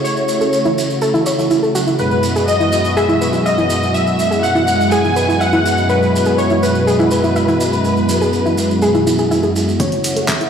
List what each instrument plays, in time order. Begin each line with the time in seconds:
Already playing: supersaw synth C#3 A3 E4 F#4
0.04 violin section C#5, digital synth lead C#5, maracas
0.17 maracas
0.28 maracas
0.41 synth pluck A4, maracas
0.53 maracas
0.65 synth pluck E4, maracas
0.78 maracas
0.90 maracas
1.01 synth pluck A4, maracas
1.14 synth pluck E4, maracas
1.26 synth pluck C#5, maracas
1.38 synth pluck E4, maracas
1.50 synth pluck E4, maracas
1.63 synth pluck A4, maracas
1.75 synth pluck F#4, maracas
1.87 synth pluck E4, maracas
1.99 supersaw synth F#2 B2 G#3 E4 F#4, digital synth lead B4, violin section B4, maracas
2.11 maracas
2.23 maracas
2.36 synth pluck G#4, maracas
2.48 violin section D#5, digital synth lead D#5, maracas
2.60 synth pluck E4, maracas
2.72 maracas
2.85 maracas
2.97 synth pluck G#4, digital synth lead E5, violin section E5, maracas
3.09 synth pluck E4, maracas
3.21 synth pluck B4, maracas
3.33 synth pluck E4, maracas
3.45 violin section D#5, digital synth lead D#5, synth pluck E5, maracas
3.58 synth pluck E4, maracas
3.70 maracas
3.83 maracas
3.94 digital synth lead E5, violin section E5, maracas
4.07 maracas
4.19 maracas
4.31 synth pluck G#4, maracas
4.43 digital synth lead F#5, violin section F#5, maracas
4.55 synth pluck E4, maracas
4.68 maracas
4.81 maracas
4.91 synth pluck G#4, digital synth lead G#5, violin section G#5, maracas
5.04 synth pluck E4, maracas
5.16 synth pluck B4, maracas
5.28 synth pluck E4, maracas
5.41 synth pluck E5, digital synth lead F#5, violin section F#5, maracas
5.53 synth pluck E4, maracas
5.66 maracas
5.77 maracas
5.89 digital synth lead B4, violin section B4, maracas
6.02 maracas
6.16 maracas
6.26 synth pluck G#4, maracas
6.38 digital synth lead C#5, violin section C#5, maracas
6.50 synth pluck E4, maracas
6.63 violin section B4, digital synth lead B4, maracas
6.75 maracas
6.87 synth pluck G#4, maracas
6.99 synth pluck E4, maracas
7.11 synth pluck B4, maracas
7.24 synth pluck E4, maracas
7.36 synth pluck E5, maracas
7.48 synth pluck E4, maracas
7.60 maracas
7.73 maracas
7.84 maracas
7.97 maracas
8.09 maracas
8.21 synth pluck G#4, maracas
8.33 maracas
8.46 synth pluck E4, maracas
8.58 maracas
8.71 maracas
8.82 synth pluck G#4, maracas
8.94 synth pluck E4, maracas
9.07 synth pluck E4, maracas
9.19 synth pluck G#4, maracas
9.31 synth pluck E4, maracas
9.43 synth pluck G#4, maracas
9.56 maracas
9.69 maracas
9.80 supersaw synth C#3 A3 E4 F#4, digital synth lead C#5, kick, closed hi-hat, maracas
9.92 closed hi-hat, maracas
10.04 open hi-hat, maracas
10.16 synth pluck A4, closed hi-hat, maracas
10.28 digital synth lead E5, kick, clap, closed hi-hat, maracas
10.41 synth pluck E4, closed hi-hat, maracas